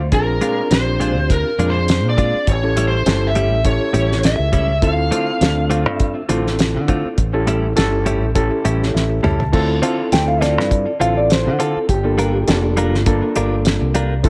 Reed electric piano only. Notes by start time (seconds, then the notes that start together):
0.12 C4 D4 F4 G#4
0.41 C4 D4 F4 G#4
0.71 C4 D4 F4 G4
1.58 C4 D4 F4 G#4
2.63 C#4 E4 G4 A4
3.06 C#4 E4 G4 A4
3.64 C#4 E4 G4 A4
4.82 C4 E4 F4 A4
5.12 C4 E4 F4 A4
5.41 C4 D4 F4 A4
6.29 C4 E4 F4 A4
7.33 C#4 E4 G4 A4
7.76 C#4 E4 G4 A4
8.35 C#4 E4 G4 A4
8.65 C#5
8.95 E5
9.24 A5
9.53 C4 E4 F4 A4
9.82 C4 E4 F4 A4
10.12 C4 E4 F4 A4
11.00 C4 E4 F4 A4
12.04 A#3 D4 F4 A4
12.47 A#3 D4 F4 A4
13.06 A#3 D4 F4 A4
14.23 C4 E4 F4 A4